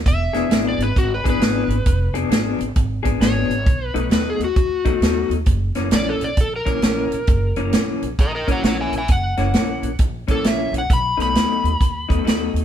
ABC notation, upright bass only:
X:1
M:4/4
L:1/8
Q:"Swing" 1/4=133
K:F#dor
V:1 name="Upright bass" clef=bass
E,,, E,,, G,,, G,,, G,,, G,,, G,,, G,,, | =F,,, F,,, _A,,, A,,, A,,, A,,, A,,, A,,, | B,,, B,,, D,, D,, D,, D,, D,, D,, | F,,, z ^A,,, A,,, A,,, A,,, A,,, A,,, |
F,,, F,,, ^A,,, A,,, A,,, A,,, A,,, A,,, | F,,, F,,, ^A,,, A,,, A,,, A,,, A,,, A,,, | B,,, B,,, D,, D,, D,, D,, D,, D,, |]